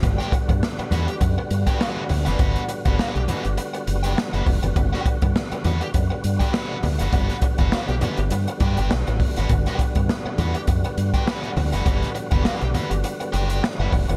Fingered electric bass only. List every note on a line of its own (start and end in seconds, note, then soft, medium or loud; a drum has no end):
0.03 0.18 G1 loud
0.32 muted fingered electric bass stroke soft
0.49 0.61 G2 loud
0.79 muted fingered electric bass stroke soft
0.92 1.06 E2 medium
1.21 1.36 F#2 medium
1.51 1.65 G2 loud
2.10 2.25 D2 medium
2.27 2.38 F#1 medium
2.40 2.54 G1 medium
2.86 2.97 F#1 medium
2.99 muted fingered electric bass stroke soft
3.15 3.27 B1 medium
3.45 3.56 G1 medium
3.87 4.14 F#1 medium
4.33 4.45 F#1 medium
4.47 4.61 F1 loud
4.63 4.75 F#1 medium
4.76 4.91 G1 loud
5.06 muted fingered electric bass stroke soft
5.22 5.34 G2 medium
5.52 muted fingered electric bass stroke soft
5.65 5.80 E2 medium
5.94 6.09 F#2 medium
6.24 6.39 G2 loud
6.83 6.98 D2 medium
7.00 7.12 F#1 medium
7.13 7.28 G1 loud
7.59 7.71 F#1 medium
7.72 muted fingered electric bass stroke soft
7.88 8.00 B1 medium
8.18 8.30 G1 medium
8.31 8.46 G2 medium
8.61 8.76 G2 medium
8.78 8.89 G1 medium
8.91 9.06 B1 medium
9.08 9.19 A1 medium
9.37 9.49 G1 medium
9.50 9.64 G1 loud
9.79 muted fingered electric bass stroke soft
9.96 10.07 G2 loud
10.25 muted fingered electric bass stroke soft
10.38 10.53 E2 medium
10.68 10.83 F#2 medium
10.97 11.12 G2 medium
11.56 11.71 D2 medium
11.73 11.85 F#1 medium
11.86 12.01 G1 medium
12.32 12.44 F#1 medium
12.45 muted fingered electric bass stroke soft
12.62 12.73 B1 medium
12.91 13.02 G1 medium
13.33 13.60 F#1 medium
13.79 13.91 F#1 medium
13.93 14.07 F1 loud
14.09 14.17 F#1 medium